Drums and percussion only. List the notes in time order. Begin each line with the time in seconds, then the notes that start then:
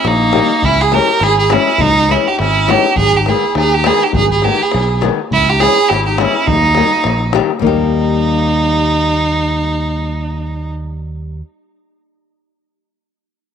0.05 davul high
0.33 davul high
0.62 davul low
0.92 davul high
1.20 davul high
1.50 davul high
1.78 davul low
2.09 davul high
2.26 davul high
2.39 davul high
2.69 davul high
2.84 davul high
2.96 davul low
3.26 davul high
3.55 davul high
3.84 davul high
4.13 davul low
4.42 davul high
4.72 davul high
5.02 davul high
5.31 davul low
5.60 davul high
5.90 davul high
6.18 davul high
6.47 davul low
6.63 davul high
6.75 davul high
6.91 davul high
7.04 davul high
7.20 davul high
7.33 davul high
7.50 davul high
7.62 davul low